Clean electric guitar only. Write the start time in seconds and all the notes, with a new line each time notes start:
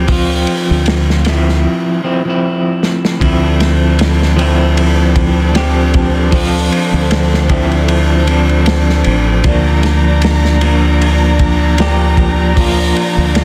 0.07 F3 C4
0.12 F4
1.26 F3 C4 E4
2.04 F3 C4 E4
2.25 F3 C4
2.29 E4
3.20 F3 C4
3.24 E4
4.37 F3 C4
4.41 E4
5.54 F3 C4 G4
6.31 F3 C4
6.35 F4
7.49 F3 C4 E4
8.26 F3 C4
8.31 D4
9.44 F3 A#3
9.49 D4
10.61 F3 A#3
10.66 D4
11.79 F3 A#3 G4
12.56 F3 A#3
12.60 F4